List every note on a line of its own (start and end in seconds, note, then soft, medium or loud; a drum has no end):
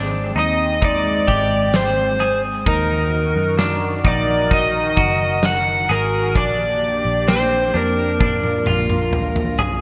0.00 0.32 G#1 medium
0.00 2.63 G#3 medium
0.00 2.63 C4 medium
0.00 0.35 D4 medium
0.36 1.24 D#2 loud
0.36 0.81 D#4 medium
0.36 0.84 D#5 loud
0.82 1.28 D#4 medium
0.82 1.79 D5 loud
0.82 kick loud
0.82 ride medium
1.27 2.63 G#1 loud
1.27 2.20 G4 medium
1.27 kick medium
1.74 2.40 C5 medium
1.74 snare loud
1.74 ride medium
1.74 tambourine medium
2.20 2.66 G#4 medium
2.66 3.32 D#2 loud
2.66 6.32 D#3 medium
2.66 3.58 D#4 medium
2.66 6.32 F#4 medium
2.66 6.32 A#4 loud
2.66 3.56 A#4 medium
2.66 kick loud
2.66 ride medium
3.36 4.02 F#2 medium
3.59 4.04 D4 medium
3.59 snare loud
3.59 ride medium
3.59 tambourine medium
4.05 4.93 A#1 medium
4.05 4.50 D#4 medium
4.05 4.53 D5 medium
4.05 kick loud
4.51 4.97 D#4 medium
4.51 5.47 D#5 loud
4.51 kick loud
4.51 ride medium
4.97 5.86 F#1 medium
4.97 5.89 F#4 medium
4.97 kick medium
5.43 5.92 F#5 loud
5.43 snare loud
5.43 ride medium
5.43 tambourine medium
5.89 6.36 G#1 medium
5.89 6.36 G#4 medium
5.89 6.38 A#4 medium
6.35 7.02 A#1 loud
6.35 9.81 A#3 medium
6.35 9.81 D4 medium
6.35 7.27 D4 medium
6.35 8.18 G4 loud
6.35 7.30 D5 loud
6.35 kick loud
6.35 ride medium
7.05 7.71 A#1 medium
7.28 7.73 C4 medium
7.28 7.77 C5 medium
7.28 snare loud
7.28 ride medium
7.28 tambourine medium
7.74 8.63 F2 loud
7.74 8.19 D4 medium
7.74 9.56 A#4 medium
8.20 8.67 D4 medium
8.20 9.81 F4 medium
8.20 kick loud
8.20 high tom medium
8.43 high tom medium
8.66 9.81 A#1 medium
8.66 9.58 F4 medium
8.66 mid tom medium
8.89 mid tom medium
9.13 mid tom medium
9.36 mid tom medium
9.59 9.81 G#4 medium
9.59 floor tom loud